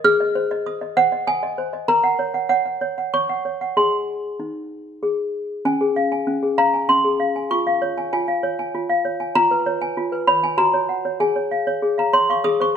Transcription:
0.04 G#4 F6
0.20 D#5
0.35 C5
0.51 D#5
0.66 D#6
0.81 D#5
0.97 C5 F#5
1.12 D#5
1.27 G#5 D#6
1.43 D#5
1.58 C5
1.73 D#5
1.88 A#4 A#5
2.04 F#5
2.19 C#5
2.34 F#5
2.49 C#5 F#5
2.65 F#5
2.81 C#5
2.98 F#5
3.14 C#5 C#6
3.29 F#5
3.45 C#5
3.61 F#5
3.77 G#4 D#5 G#5 C6
4.40 D#4
5.03 G#4
5.65 C#4 G#5
5.81 G#4
5.96 F5
6.12 G#5
6.27 C#4
6.43 G#4
6.58 F5 A#5
6.74 G#5
6.89 C#4 C6
7.05 G#4
7.20 F5
7.36 G#5
7.51 F4 C#6
7.67 F5
7.82 C#5
7.98 G#5
8.13 F4 G#5
8.28 F5
8.43 C#5
8.59 G#5
8.75 F4
8.89 F5
9.05 C#5
9.20 G#5
9.35 F4 A#5
9.51 B4
9.66 C#5
9.81 G#5
9.97 F4
10.12 B4
10.27 C#5 B5
10.43 G#5
10.58 F#4 A#5
10.74 C#5
10.89 F#5
11.05 C#5
11.20 G#4 G#5
11.36 C#5
11.51 F5
11.67 C#5
11.82 G#4
11.98 F5 A#5
12.13 C#5 C6
12.29 F5 C#6
12.44 G#4 D#6
12.60 C5 C#6

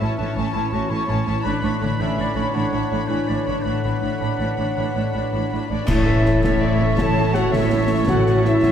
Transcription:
Already playing: A2 E3 A3 C#4 E4 A4 E5 A5
0.00 A1 A2 C#4 E4 C#5 A5
0.18 A1 A2 C#4 D4 E4 C#5 A5
0.36 A1 A2 E3 C#4 C#5 A5
0.53 A1 A2 A3 C#4 E4 C#5 A5
0.72 A1 A2 C#4 E4 F#4 C#5 A5
0.89 A1 A2 C#4 E4 A4 C#5 A5 C#6
1.08 A1 A2 C#4 C#5 G#5 A5
1.26 A1 A2 C#4 E4 C#5 A5
1.44 A1 A2 D3 D4 B4 C#5 B5
1.62 A1 A2 B3 D4 C#5 B5 C#6
1.81 A1 A2 D3 D4 C#5 B5
1.99 A1 A2 C#4 D4 B4 C#5 E5 B5
2.17 A1 A2 D4 C#5 D5 B5
2.35 A1 A2 D4 C#5 B5
2.54 A1 A2 D4 C#5 F#5 B5
2.72 A1 A2 B3 D4 C#5 B5
2.90 A1 A2 D4 C#5 B5
3.08 A1 A2 D4 E4 B4 C#5 G#5 B5
3.27 A1 A2 D4 C#5 D5 B5
3.45 A1 A2 D4 C#5 B5
3.62 A1 A2 D4 B4 C#5 F#5 B5
3.83 A1 A2 B3 D4 C#5 B5
4.01 A1 A2 D4 C#5 B5
4.20 A1 A2 D4 B4 C#5 B5
4.39 A1 A2 D4 C#5 B5
4.56 A1 A2 D4 C#5 B5
4.76 A1 A2 D4 C#5 B5
4.94 A1 A2 B3 D4 C#5 B5
5.12 A1 A2 D4 C#5 B5
5.32 A1 A2 D4 B4 C#5 B5
5.50 A1 A2 D4 C#5 B5
5.68 A1 A2 D4 C#5 D5 B5
5.87 A1 A2 E3 A3 C#4 E4 C#5 E5 A5, concert bass drum, snare, crash
6.06 C#4 A4 B4
6.23 A3 E4 A4 C#5, snare
6.42 A1 A2 C#4 E4 A4 C#5 E5 A5, concert bass drum, snare
6.61 A3 E4 C#5 D5
6.80 C#4 E4 A4 C#5
6.97 A1 A2 E3 A3 E4 A4 C#5 A5, concert bass drum, snare
7.17 C#4 A4
7.34 A3 E4 F#4 C#5 F#5, snare
7.51 A1 A2 C#4 E4 A4 C#5 E5 A5, concert bass drum, snare
7.71 A3 E4 C#6
7.89 C#4 E4 A4
8.07 A1 A2 A3 E4 F#4 A4 F#5, concert bass drum, snare
8.25 A3 C#4 A4, snare
8.44 A3 E4 E5, snare
8.62 A1 A2 C#4 E4 A4 C#5, concert bass drum, snare

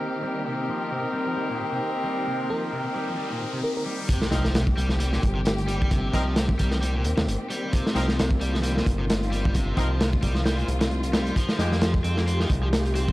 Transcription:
Already playing: D#3 A#3 C4 D#4 G4 A#4
0.23 G3
0.45 C3 C4 D#4 A#4, riser
0.68 F3
0.91 C3
1.13 G3
1.26 F3
1.36 G3
1.49 A#2
1.72 C3
2.05 G3
2.27 C3
2.50 F3 A#4
2.73 C3
2.95 G3
3.08 F3
3.18 G3
3.30 A#2
3.53 C3
3.64 A#4
3.77 A#4
3.86 G3
4.08 C3 D#3 A#3 C4 G4, kick, closed hi-hat, impact
4.22 snare
4.31 C2 F3 C4 D#4 A#4, snare, closed hi-hat
4.45 snare
4.54 C3, snare, closed hi-hat
4.67 kick
4.77 C2 G3, closed hi-hat
4.89 F3, snare
5.00 G3, closed hi-hat
5.12 A#2, snare
5.23 G1, kick, closed hi-hat
5.35 C3
5.45 snare, closed hi-hat
5.58 closed hi-hat
5.68 G3, closed hi-hat
5.82 kick
5.91 C3, kick, closed hi-hat
6.13 C2 F3 C4 D#4 A#4, kick, closed hi-hat
6.36 C3, snare, closed hi-hat
6.49 kick
6.59 C2 G3, kick, closed hi-hat
6.71 F3, snare
6.81 G3, closed hi-hat
6.94 A#2
7.04 D#2, closed hi-hat
7.17 D#2 C3, snare
7.27 G1, closed hi-hat
7.50 G3, closed hi-hat
7.73 C3 F4, kick, closed hi-hat
7.87 snare
7.95 C2 F3 C4 D#4 A#4, snare, closed hi-hat
8.08 snare
8.18 C3, snare, closed hi-hat
8.31 kick
8.40 C2 G3, closed hi-hat
8.53 F3, snare
8.63 G3, closed hi-hat
8.76 A#2, snare
8.86 G1, kick, closed hi-hat
8.99 C3
9.10 snare, closed hi-hat
9.23 closed hi-hat
9.32 G3, closed hi-hat
9.45 kick
9.54 C3, kick, closed hi-hat
9.77 C2 F3 C4 D#4 A#4, kick, closed hi-hat
10.00 C3, snare, closed hi-hat
10.13 kick
10.22 C2 G3, kick, closed hi-hat
10.35 F3, snare
10.46 G3, snare, closed hi-hat
10.58 A#2, closed hi-hat
10.68 C2, closed hi-hat
10.81 C3, snare, closed hi-hat
10.91 closed hi-hat
11.03 closed hi-hat
11.13 G3, snare, closed hi-hat
11.27 closed hi-hat
11.36 F3 G#3 G4, kick, closed hi-hat
11.49 snare
11.59 F2 G#3 A#3 D#4 G4, snare, closed hi-hat
11.72 snare
11.81 F3, snare, closed hi-hat
11.94 kick
12.04 F2 C4, closed hi-hat
12.17 A#3, snare
12.27 C4, closed hi-hat
12.40 D#3, snare
12.50 C2, kick, closed hi-hat
12.63 F3
12.73 snare, closed hi-hat
12.85 closed hi-hat
12.95 C4, closed hi-hat
13.09 kick

